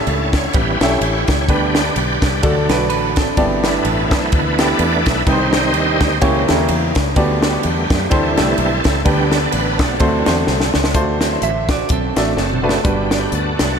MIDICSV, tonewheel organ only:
0, 0, Header, 1, 2, 480
1, 0, Start_track
1, 0, Key_signature, 1, "major"
1, 0, Tempo, 473560
1, 1508, Time_signature, 4, 2, 24, 8
1, 13979, End_track
2, 0, Start_track
2, 0, Title_t, "Tonewheel organ"
2, 0, Program_c, 0, 16
2, 0, Note_on_c, 0, 61, 64
2, 0, Note_on_c, 0, 64, 62
2, 0, Note_on_c, 0, 69, 95
2, 350, Note_on_c, 0, 73, 97
2, 369, Note_off_c, 0, 69, 0
2, 536, Note_off_c, 0, 61, 0
2, 538, Note_off_c, 0, 64, 0
2, 542, Note_on_c, 0, 59, 47
2, 545, Note_on_c, 0, 55, 52
2, 548, Note_on_c, 0, 61, 62
2, 550, Note_on_c, 0, 64, 70
2, 555, Note_on_c, 0, 67, 61
2, 557, Note_on_c, 0, 71, 105
2, 560, Note_off_c, 0, 73, 0
2, 791, Note_off_c, 0, 59, 0
2, 793, Note_off_c, 0, 55, 0
2, 794, Note_off_c, 0, 61, 0
2, 804, Note_off_c, 0, 64, 0
2, 808, Note_off_c, 0, 67, 0
2, 817, Note_on_c, 0, 64, 71
2, 819, Note_on_c, 0, 73, 118
2, 820, Note_on_c, 0, 67, 69
2, 834, Note_off_c, 0, 71, 0
2, 1266, Note_off_c, 0, 73, 0
2, 1302, Note_on_c, 0, 73, 100
2, 1465, Note_off_c, 0, 64, 0
2, 1466, Note_off_c, 0, 67, 0
2, 1498, Note_on_c, 0, 55, 67
2, 1506, Note_on_c, 0, 59, 57
2, 1510, Note_on_c, 0, 62, 86
2, 1511, Note_on_c, 0, 71, 121
2, 1514, Note_on_c, 0, 67, 89
2, 1515, Note_off_c, 0, 73, 0
2, 1633, Note_off_c, 0, 71, 0
2, 1771, Note_off_c, 0, 67, 0
2, 1780, Note_on_c, 0, 74, 106
2, 1783, Note_on_c, 0, 67, 76
2, 1791, Note_on_c, 0, 71, 76
2, 1840, Note_off_c, 0, 55, 0
2, 1845, Note_off_c, 0, 59, 0
2, 1847, Note_off_c, 0, 62, 0
2, 2451, Note_on_c, 0, 57, 51
2, 2453, Note_on_c, 0, 54, 54
2, 2463, Note_on_c, 0, 62, 63
2, 2698, Note_off_c, 0, 74, 0
2, 2699, Note_off_c, 0, 67, 0
2, 2703, Note_off_c, 0, 71, 0
2, 3172, Note_off_c, 0, 57, 0
2, 3173, Note_off_c, 0, 54, 0
2, 3179, Note_off_c, 0, 62, 0
2, 3683, Note_on_c, 0, 52, 61
2, 3689, Note_on_c, 0, 57, 50
2, 3693, Note_on_c, 0, 62, 60
2, 3693, Note_on_c, 0, 71, 87
2, 3696, Note_on_c, 0, 59, 61
2, 3700, Note_on_c, 0, 64, 61
2, 4140, Note_off_c, 0, 71, 0
2, 4160, Note_on_c, 0, 72, 85
2, 4360, Note_off_c, 0, 72, 0
2, 4378, Note_off_c, 0, 64, 0
2, 4380, Note_off_c, 0, 62, 0
2, 4389, Note_on_c, 0, 71, 96
2, 4390, Note_on_c, 0, 64, 66
2, 4392, Note_on_c, 0, 62, 59
2, 4642, Note_off_c, 0, 71, 0
2, 4654, Note_on_c, 0, 71, 72
2, 4661, Note_on_c, 0, 74, 114
2, 5133, Note_on_c, 0, 76, 106
2, 5152, Note_off_c, 0, 74, 0
2, 5293, Note_off_c, 0, 52, 0
2, 5297, Note_off_c, 0, 57, 0
2, 5300, Note_off_c, 0, 59, 0
2, 5300, Note_off_c, 0, 71, 0
2, 5304, Note_off_c, 0, 64, 0
2, 5306, Note_off_c, 0, 62, 0
2, 5326, Note_off_c, 0, 76, 0
2, 5339, Note_on_c, 0, 51, 66
2, 5346, Note_on_c, 0, 55, 55
2, 5350, Note_on_c, 0, 60, 76
2, 5353, Note_on_c, 0, 63, 84
2, 5353, Note_on_c, 0, 72, 102
2, 5355, Note_on_c, 0, 67, 83
2, 5594, Note_off_c, 0, 67, 0
2, 5596, Note_off_c, 0, 72, 0
2, 5600, Note_on_c, 0, 75, 119
2, 5607, Note_on_c, 0, 67, 67
2, 5608, Note_on_c, 0, 72, 68
2, 6258, Note_off_c, 0, 51, 0
2, 6262, Note_off_c, 0, 55, 0
2, 6264, Note_off_c, 0, 60, 0
2, 6265, Note_off_c, 0, 63, 0
2, 6292, Note_on_c, 0, 52, 60
2, 6299, Note_on_c, 0, 55, 54
2, 6303, Note_on_c, 0, 58, 66
2, 6525, Note_off_c, 0, 75, 0
2, 6528, Note_off_c, 0, 67, 0
2, 6529, Note_off_c, 0, 72, 0
2, 7010, Note_off_c, 0, 52, 0
2, 7014, Note_off_c, 0, 55, 0
2, 7016, Note_off_c, 0, 58, 0
2, 7265, Note_on_c, 0, 55, 64
2, 7276, Note_on_c, 0, 57, 60
2, 7282, Note_on_c, 0, 59, 70
2, 7728, Note_off_c, 0, 59, 0
2, 7740, Note_on_c, 0, 59, 63
2, 7752, Note_on_c, 0, 67, 85
2, 8181, Note_off_c, 0, 55, 0
2, 8185, Note_off_c, 0, 59, 0
2, 8186, Note_off_c, 0, 57, 0
2, 8210, Note_on_c, 0, 52, 58
2, 8219, Note_on_c, 0, 55, 53
2, 8225, Note_on_c, 0, 60, 71
2, 8232, Note_on_c, 0, 64, 66
2, 8234, Note_on_c, 0, 69, 103
2, 8239, Note_off_c, 0, 67, 0
2, 8929, Note_off_c, 0, 52, 0
2, 8934, Note_off_c, 0, 55, 0
2, 9142, Note_off_c, 0, 60, 0
2, 9144, Note_off_c, 0, 64, 0
2, 9145, Note_off_c, 0, 69, 0
2, 9165, Note_on_c, 0, 50, 69
2, 9172, Note_on_c, 0, 55, 62
2, 9176, Note_on_c, 0, 59, 83
2, 9177, Note_on_c, 0, 62, 83
2, 9177, Note_on_c, 0, 67, 114
2, 9431, Note_off_c, 0, 67, 0
2, 9436, Note_on_c, 0, 69, 110
2, 9509, Note_off_c, 0, 50, 0
2, 9513, Note_off_c, 0, 55, 0
2, 9643, Note_on_c, 0, 71, 113
2, 9657, Note_off_c, 0, 69, 0
2, 9931, Note_on_c, 0, 66, 88
2, 9932, Note_off_c, 0, 71, 0
2, 9938, Note_on_c, 0, 57, 65
2, 9938, Note_on_c, 0, 60, 63
2, 10097, Note_off_c, 0, 59, 0
2, 10097, Note_off_c, 0, 62, 0
2, 10115, Note_off_c, 0, 60, 0
2, 10116, Note_on_c, 0, 52, 55
2, 10127, Note_on_c, 0, 54, 53
2, 10127, Note_on_c, 0, 60, 62
2, 10465, Note_off_c, 0, 52, 0
2, 10470, Note_off_c, 0, 54, 0
2, 10471, Note_off_c, 0, 60, 0
2, 10851, Note_off_c, 0, 66, 0
2, 10855, Note_off_c, 0, 57, 0
2, 11354, Note_on_c, 0, 52, 53
2, 11359, Note_on_c, 0, 54, 51
2, 11361, Note_on_c, 0, 60, 67
2, 11664, Note_off_c, 0, 52, 0
2, 11666, Note_off_c, 0, 54, 0
2, 11667, Note_off_c, 0, 60, 0
2, 12538, Note_on_c, 0, 60, 53
2, 12538, Note_on_c, 0, 69, 88
2, 12543, Note_on_c, 0, 66, 59
2, 12988, Note_off_c, 0, 60, 0
2, 12988, Note_off_c, 0, 69, 0
2, 12991, Note_off_c, 0, 66, 0
2, 13030, Note_on_c, 0, 59, 68
2, 13032, Note_on_c, 0, 67, 95
2, 13036, Note_on_c, 0, 62, 68
2, 13518, Note_off_c, 0, 62, 0
2, 13525, Note_off_c, 0, 67, 0
2, 13525, Note_on_c, 0, 66, 63
2, 13530, Note_on_c, 0, 62, 60
2, 13533, Note_on_c, 0, 69, 89
2, 13777, Note_off_c, 0, 59, 0
2, 13786, Note_on_c, 0, 54, 55
2, 13789, Note_on_c, 0, 59, 62
2, 13792, Note_on_c, 0, 57, 54
2, 13969, Note_off_c, 0, 69, 0
2, 13979, Note_off_c, 0, 54, 0
2, 13979, Note_off_c, 0, 57, 0
2, 13979, Note_off_c, 0, 59, 0
2, 13979, Note_off_c, 0, 62, 0
2, 13979, Note_off_c, 0, 66, 0
2, 13979, End_track
0, 0, End_of_file